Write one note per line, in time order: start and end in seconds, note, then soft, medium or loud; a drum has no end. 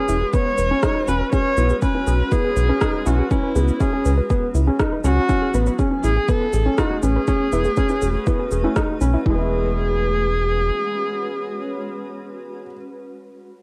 0.00 3.31 G#3 medium
0.00 0.13 C#4 medium
0.00 4.10 C#4 medium
0.00 4.10 F#4 medium
0.00 0.35 G#4 loud
0.00 4.10 B4 medium
0.08 0.24 E1 medium
0.08 0.18 E4 loud
0.08 shaker medium
0.21 0.30 G#4 medium
0.33 0.50 B3 medium
0.33 0.40 B4 medium
0.33 1.10 C#5 loud
0.33 kick loud
0.33 shaker soft
0.46 0.52 B4 medium
0.58 0.73 E1 medium
0.58 0.67 B4 loud
0.58 shaker medium
0.71 0.79 C#4 medium
0.83 0.99 D#4 medium
0.83 0.92 E4 loud
0.83 kick loud
0.83 cross-stick medium
0.83 shaker soft
0.96 1.02 D#4 medium
1.08 1.23 E1 medium
1.08 1.24 C#4 medium
1.08 1.14 F#4 medium
1.08 1.32 B4 loud
1.08 shaker medium
1.21 1.24 B4 medium
1.32 1.49 C#4 loud
1.32 1.37 G#4 loud
1.32 1.79 C#5 loud
1.32 kick loud
1.32 shaker soft
1.57 1.73 B1 loud
1.57 1.74 B3 medium
1.57 1.67 E4 loud
1.57 shaker medium
1.69 1.79 G#4 medium
1.69 shaker soft
1.82 1.90 C#4 medium
1.82 2.33 B4 loud
1.82 1.89 B4 medium
1.82 kick loud
1.82 shaker soft
1.95 2.11 C#4 medium
1.95 2.01 B4 medium
2.07 2.22 B1 medium
2.07 2.11 G#4 loud
2.07 shaker medium
2.32 2.48 B3 medium
2.32 2.41 E4 loud
2.32 3.08 G#4 loud
2.32 kick loud
2.32 shaker soft
2.45 2.54 G#4 medium
2.56 2.72 B1 loud
2.56 2.63 B4 medium
2.56 shaker medium
2.69 2.77 C#4 medium
2.69 2.75 B4 medium
2.81 2.97 D#4 medium
2.81 2.85 G#4 loud
2.81 kick loud
2.81 cross-stick medium
2.81 shaker soft
3.06 3.22 B1 loud
3.06 3.22 C#4 medium
3.06 3.15 E4 loud
3.06 3.32 F#4 medium
3.06 shaker medium
3.19 3.28 G#4 medium
3.31 5.29 F#3 medium
3.31 3.47 C#4 medium
3.31 3.82 E4 loud
3.31 3.37 B4 medium
3.31 kick loud
3.31 shaker soft
3.43 3.50 B4 medium
3.55 3.71 C#2 loud
3.55 3.72 B3 medium
3.55 3.59 G#4 loud
3.55 shaker medium
3.68 6.09 G#4 medium
3.68 shaker soft
3.80 3.88 C#4 medium
3.80 3.90 E4 loud
3.80 4.30 G#4 medium
3.80 kick loud
3.80 shaker soft
3.93 4.09 C#4 medium
3.93 4.02 G#4 medium
4.05 4.21 C#2 loud
4.05 4.12 B4 medium
4.05 shaker medium
4.10 6.09 B3 medium
4.18 6.09 E4 medium
4.18 4.24 B4 medium
4.30 4.46 B3 medium
4.30 4.34 G#4 loud
4.30 kick loud
4.30 shaker soft
4.54 4.70 C#2 loud
4.54 4.64 E4 loud
4.54 shaker medium
4.67 4.75 C#4 medium
4.67 4.77 G#4 medium
4.79 4.96 D#4 medium
4.79 4.86 B4 medium
4.79 kick loud
4.79 cross-stick medium
4.79 shaker soft
4.92 4.98 B4 medium
5.04 5.20 C#2 loud
5.04 5.20 C#4 medium
5.04 5.75 F#4 loud
5.04 5.08 G#4 loud
5.04 shaker medium
5.29 9.26 A3 medium
5.29 5.45 C#4 loud
5.29 5.38 E4 loud
5.29 kick loud
5.29 shaker soft
5.39 9.26 C#4 medium
5.39 5.51 G#4 medium
5.54 5.69 A1 loud
5.54 5.70 B3 medium
5.54 5.60 B4 medium
5.54 shaker medium
5.66 5.73 B4 medium
5.66 shaker soft
5.79 5.87 C#4 medium
5.79 5.83 G#4 loud
5.79 kick loud
5.79 shaker soft
5.91 6.07 C#4 medium
6.04 6.19 A1 medium
6.04 6.13 E4 loud
6.04 6.30 G#4 loud
6.04 shaker medium
6.17 9.27 F#4 medium
6.17 6.25 G#4 medium
6.17 9.26 B4 medium
6.28 6.44 B3 medium
6.28 6.80 A4 loud
6.28 6.35 B4 medium
6.28 kick loud
6.28 shaker soft
6.41 6.47 B4 medium
6.53 6.69 A1 loud
6.53 6.57 G#4 loud
6.53 shaker medium
6.66 6.74 C#4 medium
6.78 6.94 D#4 medium
6.78 6.87 E4 loud
6.78 7.04 F#4 loud
6.78 kick loud
6.78 cross-stick medium
6.78 shaker soft
6.91 7.00 G#4 medium
7.03 7.18 A1 loud
7.03 7.19 C#4 medium
7.03 8.76 G#4 loud
7.03 7.09 B4 medium
7.03 shaker medium
7.16 7.22 B4 medium
7.27 7.44 C#4 loud
7.27 7.32 G#4 loud
7.27 kick loud
7.27 shaker soft
7.52 7.68 E1 loud
7.52 7.68 B3 medium
7.52 7.62 E4 loud
7.52 shaker medium
7.64 7.74 G#4 medium
7.64 shaker soft
7.77 7.85 C#4 medium
7.77 7.83 B4 medium
7.77 kick loud
7.77 shaker soft
7.89 8.05 C#4 medium
7.89 7.96 B4 medium
7.89 shaker soft
8.02 8.17 E1 loud
8.02 8.06 G#4 loud
8.02 shaker medium
8.27 8.43 B3 medium
8.27 8.36 E4 loud
8.27 kick loud
8.27 shaker soft
8.39 8.48 G#4 medium
8.51 8.67 E1 loud
8.51 8.61 G#4 medium
8.51 shaker medium
8.64 8.72 C#4 medium
8.64 8.73 E4 loud
8.76 8.92 D#4 medium
8.76 8.83 D#4 medium
8.76 kick loud
8.76 cross-stick medium
8.76 shaker soft
9.01 9.16 B1 loud
9.01 9.17 C#4 medium
9.01 9.05 B4 loud
9.01 shaker medium
9.14 9.20 E4 medium
9.26 10.71 E1 loud
9.26 12.62 E3 medium
9.26 12.62 G#3 medium
9.26 9.49 E4 loud
9.26 12.63 G#4 loud
9.26 kick loud
9.30 12.66 G#3 medium
9.30 12.70 C#4 medium
9.34 12.71 B3 medium
9.34 12.74 E4 medium
9.40 12.77 F#4 medium
9.48 12.85 B4 medium